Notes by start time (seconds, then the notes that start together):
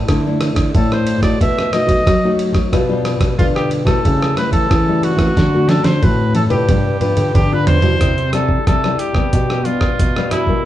0.08 D3 A3 D4 E4, kick, cross-stick, ride
0.26 A3 D4 E4
0.41 cross-stick, ride
0.55 D3, kick, cross-stick, ride
0.75 A2 A3 D4 E4 A4, kick, ride
0.92 C5, cross-stick
1.07 ride
1.21 A2 A3 D#4 F#4 D5, kick, cross-stick, ride
1.41 B2 E5, kick, ride
1.59 cross-stick
1.73 A3 D#4 F#4 D#5, cross-stick, ride
1.87 F#3, kick, ride
2.07 F#3, kick, cross-stick, ride
2.24 A3 D#4 F#4
2.39 ride
2.53 F#3, kick, cross-stick, ride
2.72 B2 G3 D4 F4, kick, cross-stick, ride
2.89 G3 D4 F4
3.05 cross-stick, ride
3.19 B2, kick, cross-stick, ride
3.38 B2 D3 G3 D4 F4, kick, ride
3.55 G4, cross-stick
3.71 ride
3.85 B2 G3 A3 E4 A4, kick, cross-stick, ride
4.04 C#3, kick, ride
4.22 cross-stick
4.37 G3 A3 E4 B4, cross-stick, ride
4.51 E3 A4, kick, ride
4.70 C#3 E3, kick, cross-stick, ride
4.88 G3 A3 E4
5.03 F#4, ride
5.17 E3 A3 C4 F#4, kick, cross-stick, ride
5.36 D3, kick, snare, ride
5.54 A3 C4 F#4
5.69 A4, snare, ride
5.84 D3 C5, snare, ride
6.02 A2 A3 C4 F#4 B4, kick, high tom, ride
6.35 A4, high tom, ride
6.49 A2 D4 F4 G4 B4, mid tom, ride
6.68 G2 G3, kick, mid tom, ride
7.00 D4 F4 B4, mid tom, ride
7.17 D3, mid tom, ride
7.34 D3 G4, kick, mid tom, ride
7.52 D4 F4 B4
7.67 C5, floor tom, ride
7.82 B2 G3 D4 E4, floor tom, ride
8.01 C3, kick, cross-stick, closed hi-hat
8.18 closed hi-hat
8.33 G3 D4 E4 A4, cross-stick, closed hi-hat
8.48 kick
8.67 C3 G3 A4, kick, cross-stick, closed hi-hat
8.84 G3 D4 E4, cross-stick
8.99 G4, closed hi-hat
9.13 C3 G3 B3 D4, kick, cross-stick
9.33 B2, kick, closed hi-hat
9.50 cross-stick
9.65 G3 B3 D4 F4, closed hi-hat
9.81 kick, cross-stick
9.99 B2, kick, closed hi-hat
10.16 G3 B3 D4, cross-stick
10.31 B2 E4, cross-stick, closed hi-hat
10.47 G3 A#3 E4, kick